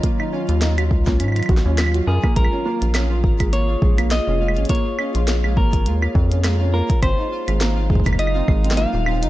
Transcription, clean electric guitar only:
X:1
M:4/4
L:1/8
Q:"Swing 16ths" 1/4=103
K:Bbm
V:1 name="Clean electric guitar"
d6 z A | B4 d2 e2 | d3 B3 z B | c4 e2 f2 |]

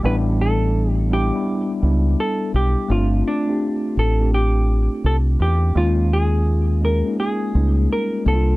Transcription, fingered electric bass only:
X:1
M:4/4
L:1/16
Q:"Swing 16ths" 1/4=84
K:Eblyd
V:1 name="Fingered electric bass" clef=bass
A,,,6- A,,, z3 ^C,,2 z2 =B,,, z | G,,,2 z4 A,,,4- A,,, z C,,2 =E,,2 | E,,6- E,, z3 _D,,2 z2 C,,2 |]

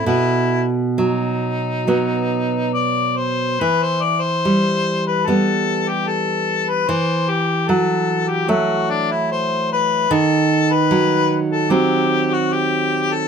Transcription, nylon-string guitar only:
X:1
M:4/4
L:1/8
Q:1/4=74
K:Em
V:1 name="Nylon-string guitar" clef=bass
B,,2 F,2 [F,B,]4 | E,2 G,2 [G,B,]4 | E,2 F,2 [F,A,]4 | ^D,2 F,2 [F,C]4 |]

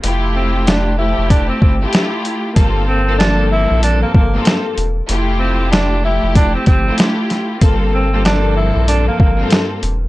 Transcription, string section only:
X:1
M:4/4
L:1/16
Q:"Swing 16ths" 1/4=95
K:Gdor
V:1 name="String section"
[A,EFG]6 [F,A,EG]4- [F,A,EG] [A,EFG]4- [A,EFG] | [G,,B,CFA]3 [G,,B,CFA] [G,,F,B,CA]6 z [G,,B,CFA]3 z2 | [A,EFG]6 [F,A,EG]4- [F,A,EG] [A,EFG]4- [A,EFG] | [G,,B,CFA]3 [G,,B,CFA] [F,B,CA]6 z [G,,B,CFA]3 z2 |]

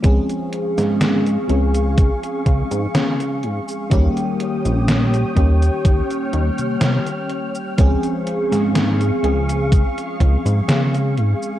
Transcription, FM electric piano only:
X:1
M:4/4
L:1/8
Q:1/4=62
K:Dblyd
V:1 name="FM electric piano"
[F,A,CDA]3 [F,A,CDA]4- [F,A,CDA] | [E,G,B,DG]3 [E,G,B,DG]4- [E,G,B,DG] | [F,A,CDA]3 [F,A,CDA]4- [F,A,CDA] |]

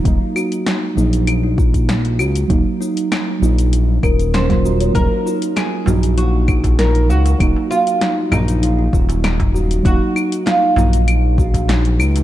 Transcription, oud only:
X:1
M:4/4
L:1/8
Q:1/4=98
K:Ebm
V:1 name="Oud"
z8 | z6 =c2 | B2 A2 G2 B G- | G F2 E3 E2 |
G2 F E4- E |]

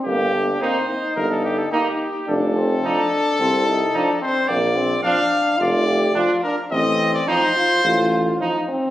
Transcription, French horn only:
X:1
M:4/4
L:1/8
Q:1/4=108
K:Fmix
V:1 name="French horn"
B, D C E3 E z | D C D2 C E D C | B, C D2 F G F D | C2 E F F2 E C |]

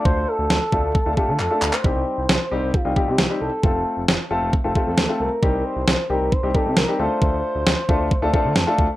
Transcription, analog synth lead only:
X:1
M:4/4
L:1/16
Q:1/4=134
K:Cdor
V:1 name="Analog synth lead"
c2 A8 G A A3 c | c8 F3 G3 A2- | A2 z8 G A A2 B2- | B2 c4 B2 c2 A2 B2 c2 |
c12 z4 |]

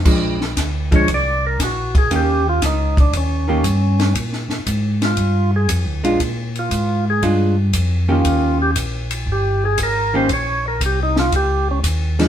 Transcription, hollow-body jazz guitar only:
X:1
M:4/4
L:1/8
Q:"Swing" 1/4=117
K:Eb
V:1 name="Hollow-body jazz guitar"
[F,A,D] z2 [F,A,D] z4 | [E,B,_DG] z4 [E,B,DG] z2 | z6 z [A,DF] | z4 [A,DF] z2 [E,B,_DG]- |
[E,B,_DG]2 z4 z [E,B,DG] | z6 z [F,A,D] |]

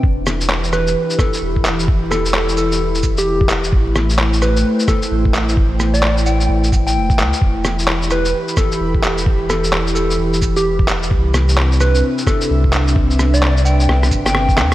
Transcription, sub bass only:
X:1
M:4/4
L:1/16
Q:"Swing 16ths" 1/4=130
K:Em
V:1 name="Sub bass" clef=bass
E,,,8 z4 E,,,4 | E,,,8 E,,,2 E,,,6 | A,,,8 z4 A,,,4 | A,,,8 A,,,4 E,,,2 D,, z |
E,,,8 z4 E,,,4 | E,,,8 E,,,2 E,,,6 | C,,8 z4 C,,4 | C,,8 C,,2 G,,,4 E,, z |]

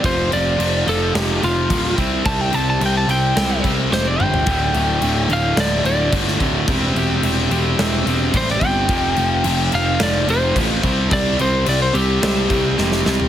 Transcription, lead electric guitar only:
X:1
M:4/4
L:1/16
Q:1/4=108
K:Cmix
V:1 name="Lead electric guitar"
c2 d4 A2 G2 F4 z2 | a g a a g a g4 z2 c d g2- | g6 f2 d2 d2 z4 | z12 c d g2- |
g6 f2 d2 c2 z4 | d2 c2 d c G8- G2 |]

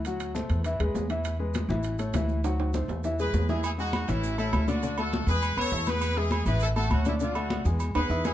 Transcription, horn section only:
X:1
M:4/4
L:1/8
Q:1/4=202
K:E
V:1 name="Horn section"
z8 | z8 | z4 z [GB]2 [EG] | [EG] [DF]2 [CE]2 [CE]2 [=DF]- |
[=DF] [FA]2 [GB]2 [Ac]2 [GB]- | [GB] [EG]2 [GB] [EA] [FA] [CF] [CE] | [=DF]3 z2 [GB]2 [EG] |]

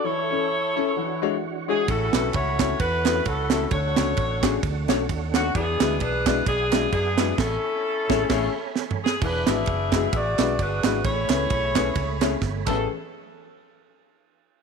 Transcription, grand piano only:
X:1
M:4/4
L:1/8
Q:"Swing" 1/4=131
K:A
V:1 name="Grand piano"
z [CEA] z [CEA] z [G,DEFc] z [G,DEFc] | z [A,CEFB] z [A,CEFc] z [A,CEFB] z [A,CEFA] | z [A,CDFc] z [A,CDFG] z [A,CDFc] z [A,CDFc] | z [G,DEFB] z [G,DEFd] z [G,DEFd] z [G,DEFB] |
z3 [A,CEGc] [A,CEGc] z3 | z [G,DEFB] z [G,DEFG] z [G,DEFB] z [G,DEFB] | z [A,CEGB] z [A,CEGB] z [A,CEGc] z [A,CGB] | z8 |]
V:2 name="Grand piano" clef=bass
E,3 z E,3 z | A,,3 z4 z | D,3 z4 z | E,3 z4 z |
z8 | E,3 z4 z | A,,3 z4 A,,, | z8 |]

